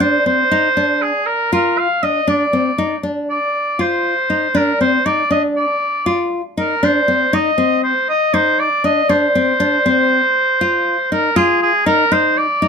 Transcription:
0.00 0.17 D4 medium
0.00 0.26 C5 medium
0.26 0.43 C4 medium
0.26 1.03 C5 medium
0.51 0.68 D#4 medium
0.77 1.11 D4 medium
1.02 1.28 G#4 medium
1.26 1.51 A#4 medium
1.53 1.87 F4 medium
1.53 1.80 A#4 medium
1.78 2.04 F5 medium
2.03 2.20 D4 medium
2.03 2.30 D#5 medium
2.28 2.45 D4 medium
2.28 3.02 D5 medium
2.53 2.70 C4 medium
2.78 2.95 D#4 medium
3.03 3.38 D4 medium
3.30 3.82 D5 medium
3.79 4.13 F4 medium
3.79 4.58 C5 medium
4.30 4.47 D#4 medium
4.55 4.72 D4 medium
4.55 4.81 A#4 medium
4.81 4.97 C4 medium
4.81 5.07 C5 medium
5.06 5.23 D#4 medium
5.06 5.31 D5 medium
5.30 5.65 D4 medium
5.30 5.43 D#5 medium
5.57 6.28 D5 medium
6.06 6.41 F4 medium
6.57 6.74 D#4 medium
6.57 6.86 A#4 medium
6.83 7.00 D4 medium
6.83 7.36 C5 medium
7.08 7.25 C4 medium
7.33 7.50 D#4 medium
7.33 7.83 D#5 loud
7.58 7.92 C4 medium
7.84 8.07 C5 medium
8.09 8.36 D#5 medium
8.34 8.68 D#4 medium
8.34 8.61 C5 medium
8.59 8.84 D5 medium
8.84 9.01 D4 medium
8.84 9.11 D#5 medium
9.09 9.27 D4 medium
9.09 11.11 C5 medium
9.35 9.52 C4 medium
9.60 9.77 D4 medium
9.86 10.20 C4 medium
10.61 10.95 F4 medium
11.12 11.29 D#4 medium
11.12 11.37 A#4 medium
11.36 11.71 F4 medium
11.36 11.61 G#4 medium
11.62 11.85 G#4 medium
11.86 12.04 D#4 medium
11.86 12.14 A#4 medium
12.12 12.46 D#4 medium
12.12 12.39 C5 medium
12.38 12.68 D5 medium
12.62 12.68 D#4 medium

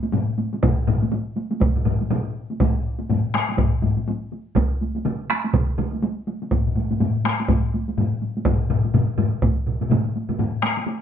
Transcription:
0.03 taiko high medium
0.12 taiko low-mid loud
0.12 taiko high medium
0.38 taiko high medium
0.53 taiko high medium
0.63 taiko loud
0.63 taiko low-mid loud
0.63 taiko mid loud
0.63 taiko high medium
0.87 taiko low-mid medium
0.87 taiko mid loud
0.87 taiko high medium
1.02 taiko high medium
1.12 taiko high medium
1.37 taiko high medium
1.51 taiko high medium
1.61 taiko loud
1.61 taiko low-mid medium
1.61 taiko mid medium
1.61 taiko high medium
1.76 taiko low-mid medium
1.76 taiko mid medium
1.85 taiko low-mid loud
1.85 taiko mid medium
1.85 taiko high medium
2.01 taiko high medium
2.10 taiko low-mid medium
2.10 taiko mid loud
2.10 taiko high medium
2.50 taiko high soft
2.60 taiko loud
2.60 taiko low-mid loud
2.60 taiko high medium
2.99 taiko high medium
3.10 taiko low-mid medium
3.10 taiko high medium
3.34 taiko rim medium
3.34 taiko high medium
3.49 taiko high soft
3.58 taiko loud
3.58 taiko low-mid loud
3.58 taiko high medium
3.83 taiko low-mid loud
3.83 taiko high soft
3.97 taiko high soft
4.08 taiko high medium
4.32 taiko high soft
4.55 taiko loud
4.55 taiko mid loud
4.55 taiko high medium
4.81 taiko high soft
4.95 taiko high medium
5.05 taiko mid medium
5.05 taiko high medium
5.30 taiko rim medium
5.30 taiko high soft
5.44 taiko high medium
5.53 taiko loud
5.53 taiko mid loud
5.53 taiko high medium
5.78 taiko mid medium
5.78 taiko high medium
5.93 taiko high medium
6.02 taiko high medium
6.27 taiko high medium
6.42 taiko high medium
6.51 taiko medium
6.51 taiko low-mid medium
6.51 taiko high medium
6.67 taiko low-mid medium
6.76 taiko low-mid medium
6.76 taiko high medium
6.91 taiko low-mid medium
6.91 taiko high medium
7.00 taiko low-mid medium
7.00 taiko high medium
7.25 taiko rim medium
7.25 taiko high medium
7.40 taiko high medium
7.48 taiko loud
7.48 taiko low-mid loud
7.48 taiko high medium
7.74 taiko high medium
7.88 taiko high medium
7.97 taiko low-mid medium
7.97 taiko high medium
8.22 taiko high soft
8.37 taiko high soft
8.45 taiko loud
8.45 taiko low-mid loud
8.45 taiko mid loud
8.45 taiko high medium
8.70 taiko low-mid loud
8.70 taiko mid medium
8.85 taiko high medium
8.94 taiko low-mid medium
8.94 taiko mid medium
8.94 taiko high medium
9.18 taiko low-mid medium
9.18 taiko mid loud
9.18 taiko high medium
9.42 taiko loud
9.42 taiko low-mid medium
9.42 taiko mid medium
9.42 taiko high medium
9.67 taiko low-mid medium
9.67 taiko mid medium
9.81 taiko low-mid medium
9.81 taiko mid medium
9.81 taiko high medium
9.90 taiko low-mid loud
9.90 taiko mid loud
9.90 taiko high medium
10.16 taiko high medium
10.29 taiko low-mid medium
10.29 taiko mid medium
10.29 taiko high soft
10.39 taiko low-mid loud
10.39 taiko high medium
10.63 taiko rim medium
10.63 taiko high medium
10.77 taiko high medium
10.87 taiko high medium

